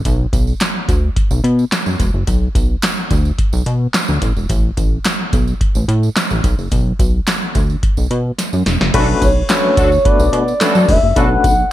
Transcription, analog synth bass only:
0, 0, Header, 1, 2, 480
1, 0, Start_track
1, 0, Key_signature, 2, "minor"
1, 0, Tempo, 555556
1, 45, Time_signature, 4, 2, 24, 8
1, 10130, End_track
2, 0, Start_track
2, 0, Title_t, "Analog synth bass"
2, 0, Program_c, 0, 38
2, 45, Note_on_c, 0, 35, 116
2, 226, Note_off_c, 0, 35, 0
2, 284, Note_on_c, 0, 35, 97
2, 466, Note_off_c, 0, 35, 0
2, 765, Note_on_c, 0, 38, 88
2, 946, Note_off_c, 0, 38, 0
2, 1131, Note_on_c, 0, 35, 94
2, 1216, Note_off_c, 0, 35, 0
2, 1242, Note_on_c, 0, 47, 111
2, 1424, Note_off_c, 0, 47, 0
2, 1610, Note_on_c, 0, 42, 81
2, 1696, Note_off_c, 0, 42, 0
2, 1724, Note_on_c, 0, 28, 89
2, 1821, Note_off_c, 0, 28, 0
2, 1849, Note_on_c, 0, 30, 79
2, 1935, Note_off_c, 0, 30, 0
2, 1965, Note_on_c, 0, 35, 101
2, 2146, Note_off_c, 0, 35, 0
2, 2204, Note_on_c, 0, 35, 90
2, 2386, Note_off_c, 0, 35, 0
2, 2683, Note_on_c, 0, 38, 91
2, 2865, Note_off_c, 0, 38, 0
2, 3050, Note_on_c, 0, 35, 97
2, 3136, Note_off_c, 0, 35, 0
2, 3165, Note_on_c, 0, 47, 95
2, 3346, Note_off_c, 0, 47, 0
2, 3533, Note_on_c, 0, 38, 86
2, 3618, Note_off_c, 0, 38, 0
2, 3644, Note_on_c, 0, 33, 95
2, 3740, Note_off_c, 0, 33, 0
2, 3773, Note_on_c, 0, 28, 78
2, 3858, Note_off_c, 0, 28, 0
2, 3885, Note_on_c, 0, 33, 109
2, 4066, Note_off_c, 0, 33, 0
2, 4123, Note_on_c, 0, 33, 93
2, 4305, Note_off_c, 0, 33, 0
2, 4604, Note_on_c, 0, 35, 84
2, 4786, Note_off_c, 0, 35, 0
2, 4972, Note_on_c, 0, 33, 88
2, 5057, Note_off_c, 0, 33, 0
2, 5083, Note_on_c, 0, 45, 104
2, 5265, Note_off_c, 0, 45, 0
2, 5452, Note_on_c, 0, 33, 90
2, 5537, Note_off_c, 0, 33, 0
2, 5564, Note_on_c, 0, 35, 94
2, 5660, Note_off_c, 0, 35, 0
2, 5691, Note_on_c, 0, 30, 73
2, 5777, Note_off_c, 0, 30, 0
2, 5804, Note_on_c, 0, 35, 102
2, 5985, Note_off_c, 0, 35, 0
2, 6043, Note_on_c, 0, 35, 94
2, 6225, Note_off_c, 0, 35, 0
2, 6524, Note_on_c, 0, 38, 89
2, 6705, Note_off_c, 0, 38, 0
2, 6892, Note_on_c, 0, 35, 87
2, 6977, Note_off_c, 0, 35, 0
2, 7004, Note_on_c, 0, 47, 109
2, 7185, Note_off_c, 0, 47, 0
2, 7372, Note_on_c, 0, 42, 88
2, 7457, Note_off_c, 0, 42, 0
2, 7484, Note_on_c, 0, 28, 86
2, 7580, Note_off_c, 0, 28, 0
2, 7612, Note_on_c, 0, 30, 78
2, 7697, Note_off_c, 0, 30, 0
2, 7724, Note_on_c, 0, 35, 114
2, 7906, Note_off_c, 0, 35, 0
2, 7964, Note_on_c, 0, 35, 97
2, 8146, Note_off_c, 0, 35, 0
2, 8444, Note_on_c, 0, 38, 101
2, 8625, Note_off_c, 0, 38, 0
2, 8811, Note_on_c, 0, 35, 97
2, 8896, Note_off_c, 0, 35, 0
2, 8923, Note_on_c, 0, 47, 120
2, 9105, Note_off_c, 0, 47, 0
2, 9291, Note_on_c, 0, 42, 91
2, 9377, Note_off_c, 0, 42, 0
2, 9405, Note_on_c, 0, 28, 98
2, 9501, Note_off_c, 0, 28, 0
2, 9531, Note_on_c, 0, 30, 85
2, 9616, Note_off_c, 0, 30, 0
2, 9646, Note_on_c, 0, 35, 119
2, 9827, Note_off_c, 0, 35, 0
2, 9885, Note_on_c, 0, 35, 99
2, 10066, Note_off_c, 0, 35, 0
2, 10130, End_track
0, 0, End_of_file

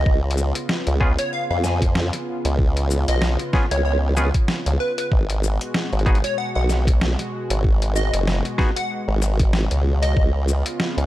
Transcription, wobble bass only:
0, 0, Header, 1, 2, 480
1, 0, Start_track
1, 0, Tempo, 631579
1, 48, Time_signature, 4, 2, 24, 8
1, 8406, End_track
2, 0, Start_track
2, 0, Title_t, "Wobble bass"
2, 0, Program_c, 0, 39
2, 47, Note_on_c, 0, 37, 99
2, 401, Note_off_c, 0, 37, 0
2, 662, Note_on_c, 0, 37, 97
2, 881, Note_off_c, 0, 37, 0
2, 1144, Note_on_c, 0, 41, 102
2, 1602, Note_off_c, 0, 41, 0
2, 1862, Note_on_c, 0, 37, 102
2, 2321, Note_off_c, 0, 37, 0
2, 2342, Note_on_c, 0, 35, 100
2, 2561, Note_off_c, 0, 35, 0
2, 2823, Note_on_c, 0, 37, 101
2, 3281, Note_off_c, 0, 37, 0
2, 3544, Note_on_c, 0, 37, 99
2, 3632, Note_off_c, 0, 37, 0
2, 3889, Note_on_c, 0, 32, 94
2, 4242, Note_off_c, 0, 32, 0
2, 4504, Note_on_c, 0, 32, 93
2, 4722, Note_off_c, 0, 32, 0
2, 4985, Note_on_c, 0, 35, 102
2, 5443, Note_off_c, 0, 35, 0
2, 5702, Note_on_c, 0, 32, 103
2, 6161, Note_off_c, 0, 32, 0
2, 6181, Note_on_c, 0, 30, 99
2, 6400, Note_off_c, 0, 30, 0
2, 6901, Note_on_c, 0, 32, 101
2, 7360, Note_off_c, 0, 32, 0
2, 7382, Note_on_c, 0, 37, 102
2, 7711, Note_off_c, 0, 37, 0
2, 7727, Note_on_c, 0, 37, 94
2, 8081, Note_off_c, 0, 37, 0
2, 8340, Note_on_c, 0, 37, 97
2, 8406, Note_off_c, 0, 37, 0
2, 8406, End_track
0, 0, End_of_file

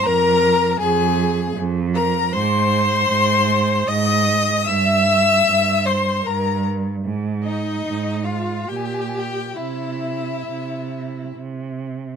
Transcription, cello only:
0, 0, Header, 1, 2, 480
1, 0, Start_track
1, 0, Tempo, 760456
1, 31, Time_signature, 3, 2, 24, 8
1, 1951, Tempo, 791557
1, 4831, Tempo, 842697
1, 5311, Tempo, 886263
1, 7195, End_track
2, 0, Start_track
2, 0, Title_t, "Cello"
2, 0, Program_c, 0, 42
2, 30, Note_on_c, 0, 41, 105
2, 448, Note_off_c, 0, 41, 0
2, 509, Note_on_c, 0, 41, 113
2, 927, Note_off_c, 0, 41, 0
2, 986, Note_on_c, 0, 41, 110
2, 1412, Note_off_c, 0, 41, 0
2, 1471, Note_on_c, 0, 44, 108
2, 1896, Note_off_c, 0, 44, 0
2, 1953, Note_on_c, 0, 44, 104
2, 2368, Note_off_c, 0, 44, 0
2, 2423, Note_on_c, 0, 44, 102
2, 2848, Note_off_c, 0, 44, 0
2, 2902, Note_on_c, 0, 43, 94
2, 3328, Note_off_c, 0, 43, 0
2, 3385, Note_on_c, 0, 43, 87
2, 3810, Note_off_c, 0, 43, 0
2, 3870, Note_on_c, 0, 43, 96
2, 4292, Note_off_c, 0, 43, 0
2, 4350, Note_on_c, 0, 44, 86
2, 4774, Note_off_c, 0, 44, 0
2, 4840, Note_on_c, 0, 44, 85
2, 5258, Note_off_c, 0, 44, 0
2, 5315, Note_on_c, 0, 46, 73
2, 5734, Note_off_c, 0, 46, 0
2, 5797, Note_on_c, 0, 48, 64
2, 6222, Note_off_c, 0, 48, 0
2, 6279, Note_on_c, 0, 48, 62
2, 6697, Note_off_c, 0, 48, 0
2, 6760, Note_on_c, 0, 48, 64
2, 7179, Note_off_c, 0, 48, 0
2, 7195, End_track
0, 0, End_of_file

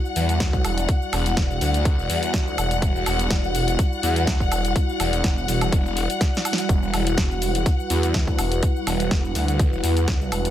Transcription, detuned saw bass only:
0, 0, Header, 1, 2, 480
1, 0, Start_track
1, 0, Key_signature, 1, "minor"
1, 0, Tempo, 483871
1, 878, Time_signature, 4, 2, 24, 8
1, 10420, End_track
2, 0, Start_track
2, 0, Title_t, "Detuned saw bass"
2, 0, Program_c, 0, 39
2, 159, Note_on_c, 0, 40, 102
2, 621, Note_off_c, 0, 40, 0
2, 639, Note_on_c, 0, 28, 96
2, 861, Note_off_c, 0, 28, 0
2, 1119, Note_on_c, 0, 28, 104
2, 1341, Note_off_c, 0, 28, 0
2, 1359, Note_on_c, 0, 28, 97
2, 1581, Note_off_c, 0, 28, 0
2, 1600, Note_on_c, 0, 38, 94
2, 1948, Note_off_c, 0, 38, 0
2, 1969, Note_on_c, 0, 28, 102
2, 2061, Note_off_c, 0, 28, 0
2, 2078, Note_on_c, 0, 40, 102
2, 2541, Note_off_c, 0, 40, 0
2, 2558, Note_on_c, 0, 28, 102
2, 2780, Note_off_c, 0, 28, 0
2, 2798, Note_on_c, 0, 28, 100
2, 2907, Note_off_c, 0, 28, 0
2, 2927, Note_on_c, 0, 28, 99
2, 3020, Note_off_c, 0, 28, 0
2, 3038, Note_on_c, 0, 28, 105
2, 3261, Note_off_c, 0, 28, 0
2, 3278, Note_on_c, 0, 28, 95
2, 3740, Note_off_c, 0, 28, 0
2, 3999, Note_on_c, 0, 40, 99
2, 4461, Note_off_c, 0, 40, 0
2, 4478, Note_on_c, 0, 28, 103
2, 4701, Note_off_c, 0, 28, 0
2, 4959, Note_on_c, 0, 28, 103
2, 5181, Note_off_c, 0, 28, 0
2, 5198, Note_on_c, 0, 28, 95
2, 5420, Note_off_c, 0, 28, 0
2, 5439, Note_on_c, 0, 28, 98
2, 5661, Note_off_c, 0, 28, 0
2, 5678, Note_on_c, 0, 28, 101
2, 6027, Note_off_c, 0, 28, 0
2, 6638, Note_on_c, 0, 28, 100
2, 6747, Note_off_c, 0, 28, 0
2, 6767, Note_on_c, 0, 28, 102
2, 6860, Note_off_c, 0, 28, 0
2, 6877, Note_on_c, 0, 28, 101
2, 7100, Note_off_c, 0, 28, 0
2, 7118, Note_on_c, 0, 28, 97
2, 7581, Note_off_c, 0, 28, 0
2, 7838, Note_on_c, 0, 40, 98
2, 8300, Note_off_c, 0, 40, 0
2, 8317, Note_on_c, 0, 28, 98
2, 8540, Note_off_c, 0, 28, 0
2, 8798, Note_on_c, 0, 28, 104
2, 9020, Note_off_c, 0, 28, 0
2, 9037, Note_on_c, 0, 28, 97
2, 9260, Note_off_c, 0, 28, 0
2, 9278, Note_on_c, 0, 38, 99
2, 9627, Note_off_c, 0, 38, 0
2, 9647, Note_on_c, 0, 28, 99
2, 9740, Note_off_c, 0, 28, 0
2, 9756, Note_on_c, 0, 40, 92
2, 10219, Note_off_c, 0, 40, 0
2, 10236, Note_on_c, 0, 28, 95
2, 10420, Note_off_c, 0, 28, 0
2, 10420, End_track
0, 0, End_of_file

